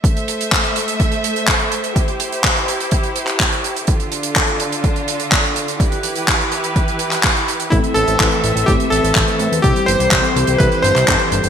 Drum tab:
HH |xxxxxxxxxxxxxxxx|xxxxxxxxxxxxxxxx|xxxxxxxxxxxxxxxx|xxxxxxxxxxxxxxxx|
CP |----x-------x---|----x------xx---|----x-------x---|----x------xx---|
BD |o---o---o---o---|o---o---o---o---|o---o---o---o---|o---o---o---o---|

HH |xxxxxxxxxxxxxxxx|xxxxxxxxxxxxxxxx|
CP |----x-------x---|----x------xx---|
BD |o---o---o---o---|o---o---o---o---|